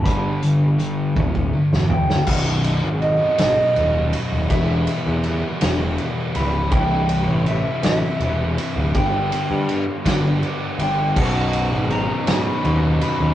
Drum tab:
CC |------------|x-----------|------------|------------|
RD |------------|--x-x-x-x-x-|x-x-x-x-x-x-|x-x-x-x-x-x-|
HH |x-x-x-------|------------|------------|------------|
SD |---------o-o|------o-----|------o-----|------o-----|
T1 |------o-----|------------|------------|------------|
FT |----------o-|------------|------------|------------|
BD |o-----oo----|o-----------|o-----------|o-----------|

CC |------------|x-----------|
RD |x-x-x-x-x-x-|--x-x-x-x-x-|
HH |------------|------------|
SD |------o-----|------o-----|
T1 |------------|------------|
FT |------------|------------|
BD |o-----o-----|o-----------|